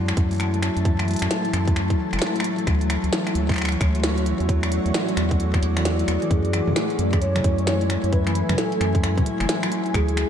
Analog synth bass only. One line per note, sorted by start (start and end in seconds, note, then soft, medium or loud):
0.00 0.13 F#2 medium
0.17 0.70 F#2 medium
0.77 1.16 F#2 medium
1.22 1.28 F#2 medium
1.53 1.95 F#2 medium
2.13 2.19 F#1 medium
2.67 2.98 D2 loud
3.04 3.10 D2 medium
3.35 3.77 D2 medium
3.81 4.34 D2 medium
4.40 4.80 E2 medium
4.86 4.92 E2 medium
5.17 5.59 E2 loud
5.62 6.04 E2 loud
6.08 6.18 E2 medium
6.31 6.61 F#2 loud
6.68 6.74 F#2 medium
6.99 7.41 F#2 loud
7.44 7.98 F#2 medium
8.04 8.43 F#2 medium
8.49 8.56 F#2 medium
8.81 9.22 F#2 loud
9.40 9.47 F#1 medium
9.94 10.25 D2 loud